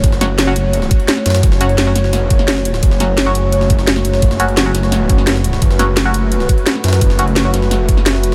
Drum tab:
HH |x---x---x---x---x---x-x-x---xxx-|x---x-x-x---x---x---x---x---x---|x---x---x---x---x---x---x---x---|x---x-x-x---x---x---x---x---x---|
SD |--o-o---o---------o-----o-o-ooo-|--o-----o---o-o-o-----o-o-o---o-|--o-o---o---------o---o-o-o---o-|--o-----o---o-o-o-----o-o-o---o-|
BD |o-------------------o-----------|o-------------------o-----------|o-------------------o-----------|o-------------------o-----------|

HH |x---x---x---x---x---x-x-x---xxx-|x---x-x-x---x---x---x---x---x---|
SD |--o-o---o---------o-----o-o-ooo-|--o-----o---o-o-o-----o-o-o-----|
BD |o-------------------o-----------|o-------------------o-----------|